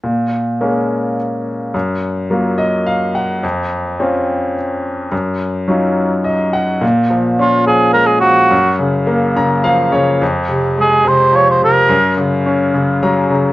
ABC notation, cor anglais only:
X:1
M:3/4
L:1/16
Q:1/4=106
K:Bbm
V:1 name="Cor anglais"
z12 | z12 | z12 | z12 |
z4 F2 A2 B A G2- | G2 z8 z2 | z4 A2 c2 d c B2- | B2 z8 z2 |]